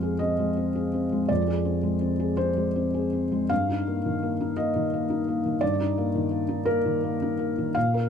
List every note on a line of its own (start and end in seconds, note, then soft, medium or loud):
0.00 1.26 F2 medium
0.00 0.39 G#3 soft
0.00 0.21 C4 soft
0.00 0.03 G#4 soft
0.00 0.32 G#4 soft
0.00 0.21 F5 medium
0.19 0.50 C4 soft
0.19 1.29 D#5 medium
0.39 0.68 G#3 soft
0.57 0.86 C4 soft
0.75 1.04 G#4 soft
0.93 1.22 C4 soft
1.12 1.41 G#3 soft
1.29 3.46 F2 medium
1.29 2.37 D5 medium
1.48 1.76 G#4 soft
1.65 1.94 C4 soft
1.83 2.12 G#3 soft
2.01 2.30 C4 soft
2.20 2.49 G#4 soft
2.37 2.68 C4 soft
2.37 3.50 C5 medium
2.57 2.86 G#3 soft
2.76 3.06 C4 soft
2.94 3.24 G#4 soft
3.13 3.43 C4 soft
3.32 3.50 G#3 soft
3.50 5.58 G2 medium
3.50 4.57 F5 medium
3.69 3.98 D#4 soft
3.87 4.15 A#3 medium
4.06 4.33 D#3 soft
4.23 4.50 A#3 soft
4.41 4.68 D#4 medium
4.57 4.85 A#3 medium
4.57 5.61 D#5 medium
4.76 5.03 D#3 medium
4.94 5.21 A#3 soft
5.10 5.38 D#4 medium
5.28 5.55 A#3 soft
5.46 5.73 D#3 medium
5.61 7.72 G2 medium
5.61 6.66 D5 medium
5.80 6.07 D#4 medium
5.98 6.25 A#3 medium
6.15 6.42 D#3 medium
6.31 6.59 A#3 medium
6.49 6.77 D#4 medium
6.65 6.95 A#3 medium
6.65 7.75 A#4 medium
6.86 7.14 D#3 medium
7.04 7.32 A#3 medium
7.22 7.51 D#4 medium
7.39 7.68 A#3 medium
7.58 7.76 D#3 medium
7.75 8.09 A#2 medium
7.75 8.09 F5 loud
7.94 8.09 A#4 medium